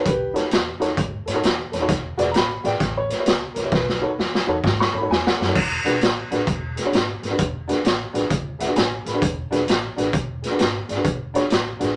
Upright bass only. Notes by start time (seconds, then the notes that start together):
0.06 B1
0.52 E2
0.82 E2
0.98 G#2
1.27 G#2
1.44 E2
1.74 E2
1.89 E1
2.19 E1
2.34 A1
2.64 A1
2.80 A1
3.26 C#2
3.56 C#2
3.72 B1
4.19 E2
4.48 E2
4.64 G#2
4.94 G#2
5.10 E2
5.40 F#2
5.56 E1
5.86 E1
6.02 A1
6.31 A1
6.47 E1
6.93 G#1
7.23 G#1
7.39 E1
7.85 A1
8.14 A1
8.31 C#2
8.60 C#2
8.76 A1
9.06 A1
9.22 E1
9.52 E1
9.68 A1
9.98 A1
10.13 E1
10.59 G#1
10.89 G#1
11.05 E1
11.51 A1
11.81 A1